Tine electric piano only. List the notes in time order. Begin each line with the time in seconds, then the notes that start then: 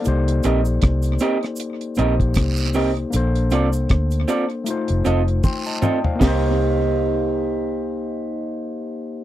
Already playing: A4 D5
0.02 A#3 D#4
0.06 G4 C5
1.97 A#3 D#4 G4 C5
3.10 A#3 D4
3.14 A4 C5
4.64 A3 D#4 F4
4.71 C5
5.44 G5 C6
5.66 D#5 A5
5.83 D5 G5
6.04 C5 F5
6.15 A#3
6.20 D#4 G4
6.27 C5